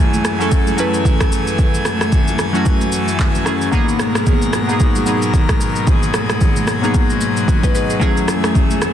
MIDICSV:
0, 0, Header, 1, 4, 480
1, 0, Start_track
1, 0, Tempo, 535714
1, 1422, Time_signature, 4, 2, 24, 8
1, 8001, End_track
2, 0, Start_track
2, 0, Title_t, "Synth keys"
2, 0, Program_c, 0, 88
2, 0, Control_c, 0, 64, 127
2, 0, Note_on_c, 0, 54, 108
2, 0, Note_on_c, 0, 57, 99
2, 0, Note_on_c, 0, 61, 98
2, 0, Note_on_c, 0, 64, 97
2, 0, Note_on_c, 0, 68, 116
2, 174, Note_off_c, 0, 54, 0
2, 178, Note_off_c, 0, 57, 0
2, 181, Note_off_c, 0, 61, 0
2, 185, Note_off_c, 0, 64, 0
2, 189, Note_off_c, 0, 68, 0
2, 347, Note_on_c, 0, 54, 81
2, 354, Note_on_c, 0, 57, 72
2, 362, Note_on_c, 0, 61, 77
2, 369, Note_on_c, 0, 64, 76
2, 376, Note_on_c, 0, 69, 91
2, 634, Note_off_c, 0, 54, 0
2, 638, Note_off_c, 0, 57, 0
2, 642, Note_off_c, 0, 61, 0
2, 645, Note_off_c, 0, 64, 0
2, 649, Note_off_c, 0, 69, 0
2, 687, Note_on_c, 0, 54, 75
2, 695, Note_on_c, 0, 57, 68
2, 702, Note_on_c, 0, 61, 68
2, 709, Note_on_c, 0, 64, 72
2, 716, Note_on_c, 0, 71, 87
2, 1470, Note_off_c, 0, 54, 0
2, 1474, Note_off_c, 0, 57, 0
2, 1477, Note_off_c, 0, 61, 0
2, 1481, Note_off_c, 0, 64, 0
2, 1484, Note_off_c, 0, 71, 0
2, 2266, Note_on_c, 0, 54, 80
2, 2272, Note_on_c, 0, 57, 77
2, 2279, Note_on_c, 0, 61, 75
2, 2287, Note_on_c, 0, 64, 76
2, 2295, Note_on_c, 0, 66, 89
2, 2938, Note_off_c, 0, 54, 0
2, 2941, Note_off_c, 0, 57, 0
2, 2944, Note_off_c, 0, 61, 0
2, 2948, Note_off_c, 0, 64, 0
2, 2952, Note_off_c, 0, 66, 0
2, 3088, Note_on_c, 0, 54, 83
2, 3096, Note_on_c, 0, 57, 77
2, 3103, Note_on_c, 0, 61, 76
2, 3110, Note_on_c, 0, 64, 80
2, 3118, Note_on_c, 0, 68, 92
2, 3295, Note_off_c, 0, 54, 0
2, 3298, Note_off_c, 0, 57, 0
2, 3302, Note_off_c, 0, 61, 0
2, 3306, Note_off_c, 0, 64, 0
2, 3309, Note_off_c, 0, 68, 0
2, 3328, Note_on_c, 0, 54, 106
2, 3335, Note_on_c, 0, 58, 100
2, 3342, Note_on_c, 0, 59, 98
2, 3350, Note_on_c, 0, 63, 92
2, 3353, Control_c, 0, 64, 0
2, 3357, Note_on_c, 0, 68, 117
2, 3515, Control_c, 0, 64, 127
2, 4014, Note_off_c, 0, 54, 0
2, 4018, Note_off_c, 0, 58, 0
2, 4021, Note_off_c, 0, 59, 0
2, 4025, Note_off_c, 0, 63, 0
2, 4029, Note_off_c, 0, 68, 0
2, 4187, Note_on_c, 0, 54, 82
2, 4195, Note_on_c, 0, 58, 76
2, 4202, Note_on_c, 0, 59, 75
2, 4209, Note_on_c, 0, 63, 75
2, 4217, Note_on_c, 0, 68, 92
2, 4474, Note_off_c, 0, 54, 0
2, 4478, Note_off_c, 0, 58, 0
2, 4482, Note_off_c, 0, 59, 0
2, 4485, Note_off_c, 0, 63, 0
2, 4489, Note_off_c, 0, 68, 0
2, 4529, Note_on_c, 0, 54, 76
2, 4537, Note_on_c, 0, 58, 69
2, 4544, Note_on_c, 0, 59, 73
2, 4551, Note_on_c, 0, 63, 71
2, 4559, Note_on_c, 0, 68, 80
2, 5311, Note_off_c, 0, 54, 0
2, 5315, Note_off_c, 0, 58, 0
2, 5318, Note_off_c, 0, 59, 0
2, 5322, Note_off_c, 0, 63, 0
2, 5326, Note_off_c, 0, 68, 0
2, 6108, Note_on_c, 0, 54, 82
2, 6115, Note_on_c, 0, 58, 76
2, 6123, Note_on_c, 0, 59, 72
2, 6130, Note_on_c, 0, 63, 77
2, 6138, Note_on_c, 0, 68, 89
2, 6710, Note_off_c, 0, 68, 0
2, 6779, Note_off_c, 0, 54, 0
2, 6782, Note_off_c, 0, 58, 0
2, 6786, Note_off_c, 0, 59, 0
2, 6790, Note_off_c, 0, 63, 0
2, 6842, Note_on_c, 0, 75, 66
2, 6848, Note_on_c, 0, 71, 60
2, 6932, Note_off_c, 0, 71, 0
2, 6937, Note_off_c, 0, 75, 0
2, 6943, Note_on_c, 0, 71, 73
2, 6949, Note_on_c, 0, 68, 61
2, 7070, Note_off_c, 0, 68, 0
2, 7074, Note_off_c, 0, 71, 0
2, 7081, Note_on_c, 0, 68, 66
2, 7164, Note_on_c, 0, 54, 113
2, 7171, Note_on_c, 0, 57, 99
2, 7178, Note_on_c, 0, 61, 96
2, 7182, Note_off_c, 0, 68, 0
2, 7186, Note_on_c, 0, 64, 99
2, 7191, Control_c, 0, 64, 0
2, 7193, Note_on_c, 0, 68, 122
2, 7325, Control_c, 0, 64, 127
2, 7852, Note_off_c, 0, 54, 0
2, 7856, Note_off_c, 0, 57, 0
2, 7860, Note_off_c, 0, 61, 0
2, 7864, Note_off_c, 0, 64, 0
2, 7867, Note_off_c, 0, 68, 0
2, 8001, End_track
3, 0, Start_track
3, 0, Title_t, "Pipe organ"
3, 0, Program_c, 1, 19
3, 0, Note_on_c, 1, 42, 67
3, 0, Note_on_c, 1, 52, 64
3, 0, Note_on_c, 1, 57, 61
3, 0, Note_on_c, 1, 80, 77
3, 3305, Note_off_c, 1, 42, 0
3, 3305, Note_off_c, 1, 52, 0
3, 3305, Note_off_c, 1, 57, 0
3, 3305, Note_off_c, 1, 80, 0
3, 3340, Note_on_c, 1, 44, 69
3, 3341, Note_on_c, 1, 47, 62
3, 3341, Note_on_c, 1, 70, 74
3, 3342, Note_on_c, 1, 54, 63
3, 5242, Note_off_c, 1, 70, 0
3, 5262, Note_on_c, 1, 68, 76
3, 7145, Note_off_c, 1, 44, 0
3, 7145, Note_off_c, 1, 47, 0
3, 7146, Note_off_c, 1, 54, 0
3, 7182, Note_on_c, 1, 42, 69
3, 7182, Note_on_c, 1, 52, 64
3, 7182, Note_on_c, 1, 57, 62
3, 8001, Note_off_c, 1, 42, 0
3, 8001, Note_off_c, 1, 52, 0
3, 8001, Note_off_c, 1, 57, 0
3, 8001, Note_off_c, 1, 68, 0
3, 8001, End_track
4, 0, Start_track
4, 0, Title_t, "Drums"
4, 122, Note_on_c, 9, 82, 54
4, 124, Note_on_c, 9, 63, 75
4, 212, Note_off_c, 9, 82, 0
4, 214, Note_off_c, 9, 63, 0
4, 221, Note_on_c, 9, 37, 94
4, 221, Note_on_c, 9, 63, 71
4, 221, Note_on_c, 9, 82, 88
4, 311, Note_off_c, 9, 37, 0
4, 311, Note_off_c, 9, 63, 0
4, 311, Note_off_c, 9, 82, 0
4, 366, Note_on_c, 9, 82, 47
4, 455, Note_off_c, 9, 82, 0
4, 462, Note_on_c, 9, 82, 73
4, 464, Note_on_c, 9, 36, 106
4, 551, Note_off_c, 9, 82, 0
4, 553, Note_off_c, 9, 36, 0
4, 601, Note_on_c, 9, 82, 54
4, 605, Note_on_c, 9, 63, 73
4, 690, Note_off_c, 9, 82, 0
4, 695, Note_off_c, 9, 63, 0
4, 700, Note_on_c, 9, 82, 97
4, 789, Note_off_c, 9, 82, 0
4, 841, Note_on_c, 9, 82, 58
4, 931, Note_off_c, 9, 82, 0
4, 942, Note_on_c, 9, 36, 91
4, 946, Note_on_c, 9, 82, 66
4, 952, Note_on_c, 9, 64, 79
4, 1032, Note_off_c, 9, 36, 0
4, 1036, Note_off_c, 9, 82, 0
4, 1042, Note_off_c, 9, 64, 0
4, 1080, Note_on_c, 9, 37, 97
4, 1081, Note_on_c, 9, 36, 87
4, 1082, Note_on_c, 9, 82, 55
4, 1083, Note_on_c, 9, 63, 49
4, 1169, Note_off_c, 9, 37, 0
4, 1171, Note_off_c, 9, 36, 0
4, 1171, Note_off_c, 9, 82, 0
4, 1172, Note_off_c, 9, 63, 0
4, 1184, Note_on_c, 9, 82, 99
4, 1274, Note_off_c, 9, 82, 0
4, 1319, Note_on_c, 9, 82, 52
4, 1409, Note_off_c, 9, 82, 0
4, 1421, Note_on_c, 9, 82, 68
4, 1422, Note_on_c, 9, 36, 121
4, 1426, Note_on_c, 9, 64, 72
4, 1511, Note_off_c, 9, 82, 0
4, 1512, Note_off_c, 9, 36, 0
4, 1516, Note_off_c, 9, 64, 0
4, 1562, Note_on_c, 9, 82, 55
4, 1652, Note_off_c, 9, 82, 0
4, 1659, Note_on_c, 9, 37, 94
4, 1661, Note_on_c, 9, 82, 89
4, 1664, Note_on_c, 9, 63, 81
4, 1749, Note_off_c, 9, 37, 0
4, 1750, Note_off_c, 9, 82, 0
4, 1754, Note_off_c, 9, 63, 0
4, 1799, Note_on_c, 9, 63, 73
4, 1801, Note_on_c, 9, 37, 91
4, 1804, Note_on_c, 9, 82, 55
4, 1889, Note_off_c, 9, 63, 0
4, 1891, Note_off_c, 9, 37, 0
4, 1894, Note_off_c, 9, 82, 0
4, 1901, Note_on_c, 9, 64, 75
4, 1901, Note_on_c, 9, 82, 62
4, 1904, Note_on_c, 9, 36, 85
4, 1991, Note_off_c, 9, 64, 0
4, 1991, Note_off_c, 9, 82, 0
4, 1993, Note_off_c, 9, 36, 0
4, 2040, Note_on_c, 9, 82, 54
4, 2044, Note_on_c, 9, 63, 75
4, 2129, Note_off_c, 9, 82, 0
4, 2133, Note_off_c, 9, 63, 0
4, 2140, Note_on_c, 9, 37, 93
4, 2140, Note_on_c, 9, 63, 77
4, 2140, Note_on_c, 9, 82, 86
4, 2229, Note_off_c, 9, 82, 0
4, 2230, Note_off_c, 9, 37, 0
4, 2230, Note_off_c, 9, 63, 0
4, 2284, Note_on_c, 9, 82, 45
4, 2373, Note_off_c, 9, 82, 0
4, 2380, Note_on_c, 9, 82, 76
4, 2383, Note_on_c, 9, 36, 103
4, 2469, Note_off_c, 9, 82, 0
4, 2472, Note_off_c, 9, 36, 0
4, 2519, Note_on_c, 9, 82, 52
4, 2523, Note_on_c, 9, 63, 73
4, 2609, Note_off_c, 9, 82, 0
4, 2613, Note_off_c, 9, 63, 0
4, 2618, Note_on_c, 9, 82, 97
4, 2707, Note_off_c, 9, 82, 0
4, 2760, Note_on_c, 9, 82, 58
4, 2850, Note_off_c, 9, 82, 0
4, 2861, Note_on_c, 9, 36, 90
4, 2865, Note_on_c, 9, 39, 91
4, 2865, Note_on_c, 9, 82, 68
4, 2870, Note_on_c, 9, 64, 73
4, 2951, Note_off_c, 9, 36, 0
4, 2954, Note_off_c, 9, 39, 0
4, 2954, Note_off_c, 9, 82, 0
4, 2960, Note_off_c, 9, 64, 0
4, 3000, Note_on_c, 9, 63, 50
4, 3001, Note_on_c, 9, 82, 57
4, 3089, Note_off_c, 9, 63, 0
4, 3090, Note_off_c, 9, 82, 0
4, 3100, Note_on_c, 9, 37, 97
4, 3103, Note_on_c, 9, 82, 98
4, 3189, Note_off_c, 9, 37, 0
4, 3193, Note_off_c, 9, 82, 0
4, 3237, Note_on_c, 9, 82, 52
4, 3327, Note_off_c, 9, 82, 0
4, 3340, Note_on_c, 9, 82, 69
4, 3342, Note_on_c, 9, 36, 117
4, 3343, Note_on_c, 9, 64, 72
4, 3430, Note_off_c, 9, 82, 0
4, 3431, Note_off_c, 9, 36, 0
4, 3433, Note_off_c, 9, 64, 0
4, 3481, Note_on_c, 9, 82, 53
4, 3571, Note_off_c, 9, 82, 0
4, 3579, Note_on_c, 9, 37, 93
4, 3581, Note_on_c, 9, 82, 92
4, 3582, Note_on_c, 9, 63, 76
4, 3669, Note_off_c, 9, 37, 0
4, 3670, Note_off_c, 9, 82, 0
4, 3672, Note_off_c, 9, 63, 0
4, 3718, Note_on_c, 9, 63, 73
4, 3721, Note_on_c, 9, 37, 96
4, 3724, Note_on_c, 9, 82, 57
4, 3807, Note_off_c, 9, 63, 0
4, 3811, Note_off_c, 9, 37, 0
4, 3813, Note_off_c, 9, 82, 0
4, 3821, Note_on_c, 9, 64, 75
4, 3821, Note_on_c, 9, 82, 65
4, 3823, Note_on_c, 9, 36, 85
4, 3910, Note_off_c, 9, 64, 0
4, 3911, Note_off_c, 9, 82, 0
4, 3913, Note_off_c, 9, 36, 0
4, 3959, Note_on_c, 9, 82, 52
4, 3964, Note_on_c, 9, 63, 74
4, 4049, Note_off_c, 9, 82, 0
4, 4054, Note_off_c, 9, 63, 0
4, 4060, Note_on_c, 9, 37, 92
4, 4060, Note_on_c, 9, 82, 88
4, 4062, Note_on_c, 9, 63, 78
4, 4149, Note_off_c, 9, 82, 0
4, 4150, Note_off_c, 9, 37, 0
4, 4152, Note_off_c, 9, 63, 0
4, 4204, Note_on_c, 9, 82, 45
4, 4294, Note_off_c, 9, 82, 0
4, 4300, Note_on_c, 9, 82, 73
4, 4303, Note_on_c, 9, 36, 100
4, 4389, Note_off_c, 9, 82, 0
4, 4392, Note_off_c, 9, 36, 0
4, 4439, Note_on_c, 9, 82, 56
4, 4445, Note_on_c, 9, 63, 75
4, 4529, Note_off_c, 9, 82, 0
4, 4534, Note_off_c, 9, 63, 0
4, 4537, Note_on_c, 9, 82, 99
4, 4627, Note_off_c, 9, 82, 0
4, 4678, Note_on_c, 9, 82, 59
4, 4768, Note_off_c, 9, 82, 0
4, 4781, Note_on_c, 9, 36, 87
4, 4784, Note_on_c, 9, 82, 69
4, 4791, Note_on_c, 9, 64, 80
4, 4871, Note_off_c, 9, 36, 0
4, 4873, Note_off_c, 9, 82, 0
4, 4880, Note_off_c, 9, 64, 0
4, 4919, Note_on_c, 9, 37, 92
4, 4920, Note_on_c, 9, 63, 50
4, 4921, Note_on_c, 9, 36, 90
4, 4921, Note_on_c, 9, 82, 56
4, 5009, Note_off_c, 9, 37, 0
4, 5010, Note_off_c, 9, 36, 0
4, 5010, Note_off_c, 9, 63, 0
4, 5011, Note_off_c, 9, 82, 0
4, 5024, Note_on_c, 9, 82, 100
4, 5113, Note_off_c, 9, 82, 0
4, 5158, Note_on_c, 9, 82, 50
4, 5248, Note_off_c, 9, 82, 0
4, 5261, Note_on_c, 9, 82, 69
4, 5262, Note_on_c, 9, 36, 120
4, 5264, Note_on_c, 9, 64, 72
4, 5351, Note_off_c, 9, 82, 0
4, 5352, Note_off_c, 9, 36, 0
4, 5354, Note_off_c, 9, 64, 0
4, 5401, Note_on_c, 9, 82, 54
4, 5491, Note_off_c, 9, 82, 0
4, 5500, Note_on_c, 9, 37, 96
4, 5501, Note_on_c, 9, 82, 89
4, 5502, Note_on_c, 9, 63, 78
4, 5589, Note_off_c, 9, 37, 0
4, 5591, Note_off_c, 9, 82, 0
4, 5592, Note_off_c, 9, 63, 0
4, 5638, Note_on_c, 9, 63, 76
4, 5641, Note_on_c, 9, 37, 96
4, 5644, Note_on_c, 9, 82, 56
4, 5727, Note_off_c, 9, 63, 0
4, 5730, Note_off_c, 9, 37, 0
4, 5733, Note_off_c, 9, 82, 0
4, 5741, Note_on_c, 9, 64, 76
4, 5742, Note_on_c, 9, 82, 64
4, 5744, Note_on_c, 9, 36, 87
4, 5830, Note_off_c, 9, 64, 0
4, 5831, Note_off_c, 9, 82, 0
4, 5833, Note_off_c, 9, 36, 0
4, 5880, Note_on_c, 9, 82, 52
4, 5884, Note_on_c, 9, 63, 77
4, 5969, Note_off_c, 9, 82, 0
4, 5974, Note_off_c, 9, 63, 0
4, 5980, Note_on_c, 9, 82, 90
4, 5981, Note_on_c, 9, 37, 90
4, 5981, Note_on_c, 9, 63, 78
4, 6070, Note_off_c, 9, 37, 0
4, 6070, Note_off_c, 9, 63, 0
4, 6070, Note_off_c, 9, 82, 0
4, 6125, Note_on_c, 9, 82, 45
4, 6215, Note_off_c, 9, 82, 0
4, 6221, Note_on_c, 9, 82, 73
4, 6223, Note_on_c, 9, 36, 103
4, 6311, Note_off_c, 9, 82, 0
4, 6313, Note_off_c, 9, 36, 0
4, 6360, Note_on_c, 9, 82, 54
4, 6365, Note_on_c, 9, 63, 70
4, 6450, Note_off_c, 9, 82, 0
4, 6454, Note_off_c, 9, 63, 0
4, 6459, Note_on_c, 9, 82, 102
4, 6549, Note_off_c, 9, 82, 0
4, 6601, Note_on_c, 9, 82, 59
4, 6690, Note_off_c, 9, 82, 0
4, 6702, Note_on_c, 9, 36, 88
4, 6706, Note_on_c, 9, 82, 66
4, 6711, Note_on_c, 9, 64, 75
4, 6792, Note_off_c, 9, 36, 0
4, 6796, Note_off_c, 9, 82, 0
4, 6800, Note_off_c, 9, 64, 0
4, 6841, Note_on_c, 9, 36, 91
4, 6841, Note_on_c, 9, 63, 48
4, 6841, Note_on_c, 9, 82, 56
4, 6930, Note_off_c, 9, 36, 0
4, 6931, Note_off_c, 9, 63, 0
4, 6931, Note_off_c, 9, 82, 0
4, 6944, Note_on_c, 9, 82, 96
4, 7033, Note_off_c, 9, 82, 0
4, 7078, Note_on_c, 9, 82, 54
4, 7168, Note_off_c, 9, 82, 0
4, 7181, Note_on_c, 9, 82, 69
4, 7182, Note_on_c, 9, 36, 121
4, 7185, Note_on_c, 9, 64, 69
4, 7270, Note_off_c, 9, 82, 0
4, 7271, Note_off_c, 9, 36, 0
4, 7274, Note_off_c, 9, 64, 0
4, 7321, Note_on_c, 9, 82, 55
4, 7411, Note_off_c, 9, 82, 0
4, 7419, Note_on_c, 9, 37, 94
4, 7421, Note_on_c, 9, 82, 94
4, 7423, Note_on_c, 9, 63, 79
4, 7509, Note_off_c, 9, 37, 0
4, 7510, Note_off_c, 9, 82, 0
4, 7513, Note_off_c, 9, 63, 0
4, 7560, Note_on_c, 9, 63, 72
4, 7561, Note_on_c, 9, 37, 98
4, 7564, Note_on_c, 9, 82, 57
4, 7649, Note_off_c, 9, 63, 0
4, 7651, Note_off_c, 9, 37, 0
4, 7653, Note_off_c, 9, 82, 0
4, 7662, Note_on_c, 9, 64, 75
4, 7663, Note_on_c, 9, 82, 63
4, 7664, Note_on_c, 9, 36, 87
4, 7752, Note_off_c, 9, 64, 0
4, 7752, Note_off_c, 9, 82, 0
4, 7753, Note_off_c, 9, 36, 0
4, 7800, Note_on_c, 9, 82, 55
4, 7805, Note_on_c, 9, 63, 78
4, 7889, Note_off_c, 9, 82, 0
4, 7894, Note_off_c, 9, 63, 0
4, 7900, Note_on_c, 9, 37, 91
4, 7900, Note_on_c, 9, 82, 93
4, 7901, Note_on_c, 9, 63, 75
4, 7989, Note_off_c, 9, 82, 0
4, 7990, Note_off_c, 9, 37, 0
4, 7991, Note_off_c, 9, 63, 0
4, 8001, End_track
0, 0, End_of_file